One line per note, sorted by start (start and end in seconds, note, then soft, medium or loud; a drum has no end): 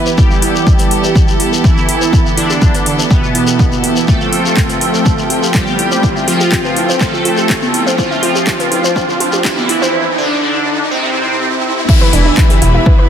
0.00 0.15 E3 medium
0.00 0.15 B3 medium
0.00 4.04 B3 medium
0.00 0.15 E4 medium
0.00 9.90 G4 medium
0.00 0.14 B4 medium
0.00 riser medium
0.06 0.13 B4 loud
0.06 shekere medium
0.18 1.86 E3 medium
0.18 1.55 G3 medium
0.18 1.86 B3 medium
0.18 0.23 E4 medium
0.18 1.86 E4 medium
0.18 1.55 G4 loud
0.18 4.04 A4 medium
0.18 kick loud
0.18 shekere medium
0.31 0.35 E5 medium
0.31 shekere soft
0.42 0.50 E4 loud
0.42 open hi-hat loud
0.55 0.62 G4 medium
0.55 shekere medium
0.67 kick loud
0.67 shekere medium
0.79 0.87 B4 loud
0.79 open hi-hat medium
0.79 shekere soft
0.91 0.96 E4 medium
0.91 open hi-hat loud
1.04 1.11 B4 loud
1.04 shekere medium
1.16 kick loud
1.16 shekere medium
1.28 1.35 E4 medium
1.28 shekere soft
1.40 1.48 E4 loud
1.40 open hi-hat loud
1.53 1.60 G4 medium
1.53 shekere medium
1.64 2.28 E3 medium
1.64 2.28 E4 loud
1.64 kick loud
1.64 shekere medium
1.77 1.88 B3 medium
1.77 shekere soft
1.89 2.10 E3 medium
1.89 2.10 B3 medium
1.89 1.93 E4 medium
1.89 2.10 E4 medium
1.89 open hi-hat loud
2.01 2.08 B4 loud
2.01 shekere medium
2.13 3.81 E3 medium
2.13 3.81 B3 medium
2.13 3.81 E4 medium
2.13 kick loud
2.13 shekere medium
2.26 2.30 E5 medium
2.26 shekere soft
2.37 3.01 D3 medium
2.37 3.01 D4 loud
2.37 2.45 E4 loud
2.37 open hi-hat loud
2.50 2.57 G4 medium
2.50 shekere medium
2.62 2.73 G4 medium
2.62 kick loud
2.62 shekere medium
2.74 2.82 B4 loud
2.74 open hi-hat medium
2.74 shekere soft
2.86 2.91 E4 medium
2.86 open hi-hat loud
2.99 3.06 B4 loud
2.99 shekere medium
3.11 3.99 B2 medium
3.11 3.99 B3 loud
3.11 3.15 G5 medium
3.11 kick loud
3.11 shekere medium
3.23 3.30 E4 medium
3.23 shekere soft
3.35 3.43 E4 loud
3.35 open hi-hat loud
3.47 3.55 G4 medium
3.47 shekere medium
3.59 3.71 G4 medium
3.59 kick loud
3.59 shekere medium
3.72 3.83 B3 medium
3.72 shekere soft
3.84 4.05 E3 loud
3.84 4.05 B3 medium
3.84 3.88 E4 medium
3.84 4.05 E4 loud
3.84 open hi-hat loud
3.96 4.04 B4 loud
3.96 shekere medium
4.08 5.76 F3 medium
4.08 9.90 A3 medium
4.08 5.45 A3 medium
4.08 5.76 C4 medium
4.08 4.13 E4 medium
4.08 5.76 F4 medium
4.08 5.45 A4 loud
4.08 9.90 G5 medium
4.08 kick loud
4.08 shekere medium
4.21 4.25 E5 medium
4.21 shekere soft
4.33 4.40 F4 loud
4.33 open hi-hat loud
4.45 4.52 G4 medium
4.45 shekere medium
4.57 kick loud
4.57 clap loud
4.57 shekere medium
4.69 4.77 B4 loud
4.69 open hi-hat medium
4.69 shekere soft
4.81 4.86 E4 medium
4.81 open hi-hat loud
4.94 5.01 C5 loud
4.94 shekere medium
5.06 5.10 G5 medium
5.06 kick loud
5.06 shekere medium
5.18 5.26 F4 medium
5.18 shekere soft
5.30 5.38 F4 loud
5.30 open hi-hat loud
5.43 5.50 G4 medium
5.43 shekere medium
5.54 6.18 G3 medium
5.54 6.18 G4 loud
5.54 5.66 G4 medium
5.54 kick loud
5.54 clap loud
5.54 shekere medium
5.67 5.78 B3 medium
5.67 shekere soft
5.79 6.01 F3 medium
5.79 6.01 C4 medium
5.79 5.84 E4 medium
5.79 6.01 F4 medium
5.79 open hi-hat loud
5.92 5.99 C5 loud
5.92 shekere medium
6.03 7.71 F3 medium
6.03 7.71 C4 medium
6.03 6.08 E4 medium
6.03 7.71 F4 medium
6.03 kick loud
6.03 shekere medium
6.16 6.20 E5 medium
6.16 shekere soft
6.28 6.92 F3 medium
6.28 6.35 F4 loud
6.28 6.92 F4 loud
6.28 open hi-hat loud
6.40 6.48 G4 medium
6.40 shekere medium
6.52 6.64 G4 medium
6.52 kick loud
6.52 clap loud
6.52 shekere medium
6.65 6.72 B4 loud
6.65 shekere soft
6.76 6.81 E4 medium
6.76 open hi-hat loud
6.89 6.96 C5 loud
6.89 shekere medium
7.01 7.89 A3 medium
7.01 7.89 A4 loud
7.01 7.06 G5 medium
7.01 kick loud
7.01 clap medium
7.01 shekere medium
7.14 7.21 F4 medium
7.14 shekere soft
7.25 7.33 F4 loud
7.25 open hi-hat loud
7.37 7.45 G4 medium
7.37 shekere medium
7.49 7.61 G4 medium
7.49 kick loud
7.49 clap loud
7.49 shekere medium
7.62 7.73 B3 medium
7.62 shekere soft
7.74 7.96 F3 medium
7.74 7.96 C4 medium
7.74 7.79 E4 medium
7.74 7.96 F4 medium
7.74 open hi-hat loud
7.87 7.94 C5 loud
7.87 shekere medium
7.98 9.66 F3 medium
7.98 9.35 F3 medium
7.98 9.66 C4 medium
7.98 8.03 E4 medium
7.98 9.66 F4 medium
7.98 9.35 F4 loud
7.98 kick loud
7.98 shekere medium
8.11 8.15 E5 medium
8.11 shekere soft
8.23 8.31 F4 loud
8.23 open hi-hat loud
8.35 8.43 G4 medium
8.35 shekere medium
8.47 8.59 G4 medium
8.47 kick loud
8.47 clap loud
8.47 shekere medium
8.60 8.67 B4 loud
8.60 open hi-hat medium
8.60 shekere soft
8.71 8.76 E4 medium
8.71 open hi-hat loud
8.84 8.91 C5 loud
8.84 shekere medium
8.96 9.01 G5 medium
8.96 kick loud
8.96 shekere medium
9.09 9.16 F4 medium
9.09 shekere soft
9.20 9.28 F4 loud
9.20 open hi-hat loud
9.33 9.40 G4 medium
9.33 shekere medium
9.45 10.09 E3 medium
9.45 10.09 E4 loud
9.45 9.56 G4 medium
9.45 kick loud
9.45 clap loud
9.45 shekere medium
9.57 9.68 B3 medium
9.57 shekere soft
9.69 9.91 F3 medium
9.69 9.91 C4 medium
9.69 9.74 E4 medium
9.69 9.91 F4 medium
9.69 open hi-hat loud
9.82 9.89 C5 loud
9.82 shekere medium
10.18 10.82 D3 medium
10.18 10.82 D4 loud
10.91 11.79 C3 medium
10.91 11.79 C4 loud
11.89 13.09 E3 medium
11.89 13.09 B3 medium
11.89 11.96 E4 medium
11.89 13.09 E4 medium
11.89 13.09 E4 loud
11.89 13.09 G4 medium
11.89 13.09 B4 medium
11.89 11.96 E5 medium
11.89 13.09 E5 medium
11.89 13.09 B5 medium
11.89 kick loud
11.89 crash loud
11.89 downlifter medium
12.01 12.06 B4 loud
12.01 12.06 B5 medium
12.13 12.30 E1 loud
12.13 12.21 D4 loud
12.13 12.21 D5 medium
12.13 open hi-hat loud
12.26 12.30 D4 loud
12.26 12.30 D5 medium
12.37 12.45 B4 medium
12.37 12.45 B5 medium
12.37 kick loud
12.37 clap loud
12.50 12.55 G4 medium
12.50 12.55 G5 medium
12.50 open hi-hat medium
12.62 12.79 E1 loud
12.62 12.70 E4 medium
12.62 12.70 E5 medium
12.62 open hi-hat loud
12.75 12.79 E4 loud
12.75 12.79 E5 medium
12.86 12.94 B4 medium
12.86 12.94 B5 medium
12.86 kick loud
12.99 13.03 B4 loud
12.99 13.03 B5 medium